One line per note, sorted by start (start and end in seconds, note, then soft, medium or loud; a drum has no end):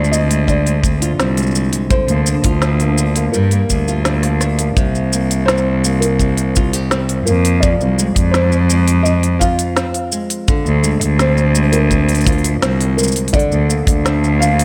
0.00 1.12 D2 loud
0.00 0.47 D3 medium
0.00 0.29 G#3 medium
0.00 0.10 C4 medium
0.00 1.01 F4 medium
0.00 0.13 D5 loud
0.04 shaker soft
0.11 0.82 C4 medium
0.11 0.45 D#5 loud
0.11 shaker medium
0.29 0.65 G#3 medium
0.29 open hi-hat medium
0.29 shaker soft
0.47 1.91 D3 medium
0.47 1.51 D5 medium
0.47 kick medium
0.47 shaker soft
0.66 1.36 G#3 medium
0.66 open hi-hat soft
0.66 shaker soft
0.83 1.18 C4 medium
0.83 kick medium
0.83 shaker medium
1.02 2.45 F4 medium
1.02 open hi-hat medium
1.02 shaker soft
1.19 1.83 C2 medium
1.19 1.54 C4 medium
1.19 snare loud
1.19 shaker soft
1.37 1.72 G#3 medium
1.37 open hi-hat soft
1.37 shaker soft
1.42 shaker soft
1.47 shaker soft
1.51 shaker soft
1.55 1.98 C4 medium
1.55 shaker medium
1.64 shaker soft
1.69 shaker soft
1.73 1.99 G#3 medium
1.73 open hi-hat medium
1.73 shaker soft
1.90 3.41 D3 medium
1.90 3.38 C5 loud
1.90 kick loud
1.90 shaker soft
2.08 2.35 D2 medium
2.08 2.81 A#3 medium
2.08 open hi-hat soft
2.08 shaker soft
2.26 2.62 D4 medium
2.26 shaker medium
2.44 3.26 D2 loud
2.44 3.41 F4 medium
2.44 kick medium
2.44 open hi-hat medium
2.44 shaker soft
2.62 2.98 D4 medium
2.62 snare loud
2.62 shaker soft
2.80 3.16 A#3 medium
2.80 open hi-hat soft
2.80 shaker soft
2.98 3.42 D4 medium
2.98 shaker medium
3.16 3.52 A#3 medium
3.16 open hi-hat medium
3.16 shaker soft
3.32 3.69 G2 loud
3.32 6.59 G3 medium
3.32 4.36 A#4 medium
3.32 shaker soft
3.51 4.24 A#3 medium
3.51 open hi-hat soft
3.51 shaker soft
3.70 4.69 D2 medium
3.70 4.04 D4 medium
3.70 kick soft
3.70 shaker medium
3.88 4.84 F4 medium
3.88 shaker soft
4.05 4.40 D4 medium
4.05 cross-stick medium
4.05 snare loud
4.05 shaker soft
4.23 4.59 A#3 medium
4.23 cross-stick medium
4.23 open hi-hat soft
4.23 shaker soft
4.41 4.84 D4 medium
4.41 cross-stick medium
4.41 shaker medium
4.59 5.13 A#3 medium
4.59 open hi-hat medium
4.59 shaker soft
4.76 7.19 C2 medium
4.76 7.63 C3 medium
4.76 kick loud
4.76 shaker soft
4.95 shaker soft
5.13 5.84 A#3 medium
5.13 shaker medium
5.31 open hi-hat medium
5.31 shaker soft
5.46 6.19 C4 medium
5.46 6.02 C5 loud
5.46 snare loud
5.46 shaker soft
5.58 shaker soft
5.84 7.27 A#3 medium
5.84 shaker medium
6.00 6.86 A#4 medium
6.00 open hi-hat medium
6.00 shaker soft
6.19 6.92 C4 medium
6.19 kick medium
6.19 shaker soft
6.37 open hi-hat soft
6.37 shaker soft
6.56 6.74 F4 medium
6.56 kick medium
6.56 shaker medium
6.73 7.70 G4 medium
6.73 open hi-hat medium
6.73 shaker soft
6.91 8.34 C4 medium
6.91 snare loud
6.91 shaker soft
7.09 open hi-hat soft
7.09 shaker soft
7.25 7.73 F2 loud
7.25 7.70 A#3 medium
7.25 7.59 A#4 medium
7.25 shaker medium
7.45 open hi-hat medium
7.45 shaker soft
7.60 10.49 F2 medium
7.60 8.35 D5 medium
7.60 kick loud
7.60 shaker soft
7.81 8.07 C2 medium
7.81 shaker soft
7.99 8.70 G#3 medium
7.99 shaker medium
8.16 9.87 F2 loud
8.16 kick loud
8.16 open hi-hat medium
8.16 shaker soft
8.31 9.05 C4 medium
8.31 9.00 C5 medium
8.31 snare loud
8.31 shaker soft
8.52 shaker soft
8.70 10.12 G#3 medium
8.70 shaker medium
8.88 open hi-hat medium
8.88 shaker soft
9.03 9.76 C4 medium
9.03 9.11 D#5 loud
9.03 shaker soft
9.23 open hi-hat soft
9.23 shaker soft
9.39 12.26 F4 medium
9.39 10.08 F5 loud
9.39 kick medium
9.39 shaker medium
9.59 open hi-hat medium
9.59 shaker soft
9.76 11.19 C4 medium
9.76 snare loud
9.76 shaker soft
9.94 open hi-hat soft
9.94 shaker soft
10.12 10.82 G#3 medium
10.12 shaker medium
10.30 open hi-hat medium
10.30 shaker soft
10.48 13.33 D3 medium
10.48 kick loud
10.48 shaker medium
10.66 10.92 D2 medium
10.66 shaker soft
10.83 11.54 G#3 medium
10.83 shaker medium
11.01 12.55 D2 loud
11.01 open hi-hat medium
11.01 shaker soft
11.19 11.89 C4 medium
11.19 11.74 C5 medium
11.19 snare loud
11.19 shaker soft
11.37 shaker soft
11.55 12.98 G#3 medium
11.55 shaker medium
11.72 12.95 A#4 medium
11.72 open hi-hat medium
11.72 shaker soft
11.91 12.61 C4 medium
11.91 kick medium
11.91 shaker soft
12.09 open hi-hat soft
12.09 shaker soft
12.12 open hi-hat soft
12.12 shaker soft
12.15 shaker soft
12.18 open hi-hat soft
12.18 shaker soft
12.21 shaker soft
12.24 14.64 F4 medium
12.24 kick loud
12.24 open hi-hat soft
12.24 shaker soft
12.27 shaker medium
12.32 open hi-hat soft
12.38 open hi-hat soft
12.44 open hi-hat medium
12.44 shaker soft
12.62 13.26 C2 medium
12.62 13.41 C4 medium
12.62 snare medium
12.62 shaker soft
12.81 open hi-hat soft
12.81 shaker soft
12.97 13.69 G#3 medium
12.97 13.34 A#4 medium
12.97 shaker medium
13.03 shaker medium
13.08 shaker soft
13.12 shaker soft
13.16 open hi-hat medium
13.16 shaker soft
13.28 open hi-hat soft
13.33 14.64 D3 medium
13.33 14.44 D5 loud
13.33 kick loud
13.33 shaker soft
13.39 open hi-hat soft
13.51 13.78 D2 medium
13.51 shaker soft
13.69 14.40 A#3 medium
13.69 shaker medium
13.87 14.64 D2 loud
13.87 kick loud
13.87 open hi-hat medium
13.87 shaker soft
14.05 14.64 D4 medium
14.05 snare loud
14.05 shaker soft
14.24 shaker soft
14.40 14.64 A#3 medium
14.40 14.64 F5 loud
14.40 shaker medium
14.59 open hi-hat medium
14.59 shaker soft